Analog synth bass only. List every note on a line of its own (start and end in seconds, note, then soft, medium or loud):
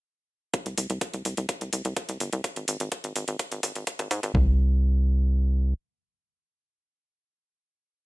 0.66 0.75 C2 medium
0.78 0.87 C2 loud
0.90 0.99 C2 medium
1.14 1.22 C2 medium
1.25 1.34 C2 medium
1.38 1.46 C2 medium
1.61 1.70 C2 medium
1.73 1.82 C2 loud
1.85 1.94 C2 medium
2.09 2.18 C2 medium
2.20 2.30 G1 loud
2.33 2.41 C2 medium
2.56 2.65 G#1 medium
2.68 2.77 G#1 loud
2.80 2.89 G#1 medium
3.04 3.13 G#1 medium
3.16 3.25 G#1 loud
3.28 3.37 G#1 medium
3.52 3.60 G#1 medium
3.63 3.73 G#1 loud
3.76 3.84 G#1 medium
3.99 4.08 G#1 medium
4.11 4.20 G#2 loud
4.23 4.32 G#1 loud
4.35 5.74 C2 loud